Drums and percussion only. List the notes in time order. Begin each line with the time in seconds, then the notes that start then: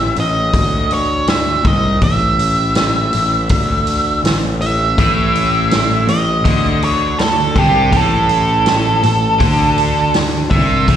0.16 open hi-hat
0.54 kick, open hi-hat
0.91 open hi-hat
1.27 snare, open hi-hat
1.65 kick, open hi-hat
2.02 kick, open hi-hat
2.39 open hi-hat
2.75 snare, open hi-hat
3.13 open hi-hat
3.49 kick, open hi-hat
3.87 open hi-hat
4.25 snare, open hi-hat
4.62 open hi-hat
4.98 kick, open hi-hat
5.35 open hi-hat
5.71 snare, open hi-hat
6.08 open hi-hat
6.45 kick, open hi-hat
6.82 open hi-hat
7.19 snare, open hi-hat
7.56 kick, open hi-hat
7.93 kick, open hi-hat
8.29 open hi-hat
8.66 snare, open hi-hat
9.03 open hi-hat
9.40 kick, open hi-hat
9.78 open hi-hat
10.14 snare, open hi-hat
10.51 kick, open hi-hat
10.88 kick, open hi-hat